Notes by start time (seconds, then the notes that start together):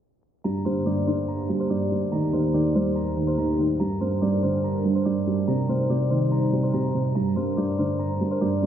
0.44 G2 D3 A#3 G4 A#5 A#6
0.65 G2 C5 C6
0.86 G2 D5 D6
1.07 D3 C5 C6
1.28 A#5 A#6
1.49 G2
1.60 C5 C6
1.70 G2 D5 D6
1.91 G2
2.12 D#2 D#3 A#5 A#6
2.33 D#3 C5 C6
2.54 D#3 D5 D6
2.75 G3 C5 C6
2.96 A#5 A#6
3.17 D#3
3.27 C5 C6
3.38 D#3 A#5 A#6
3.59 D#3
3.80 G2 G3 D4 A#4 A#5 A#6
4.01 G2 C5 C6
4.21 G2 D5 D6
4.43 D3 C5 C6
4.64 A#5 A#6
4.85 G2
4.95 C5 C6
5.05 G2 D5 D6
5.27 G2
5.48 C3 G3 D#4 D5 A#5 A#6
5.69 C3 C5 C6
5.89 C3 D5 D6
6.10 D#3 C5 C6
6.32 A#5 A#6
6.53 C3
6.63 C5 C6
6.74 C3 A#5 A#6
6.94 C3
7.15 G2 D4 A#4 A#5 A#6
7.36 G2 C5 C6
7.57 G2 D5 D6
7.78 D3 C5 C6
7.99 A#5 A#6
8.20 G2
8.31 C5 C6
8.41 G2 D5 D6
8.62 G2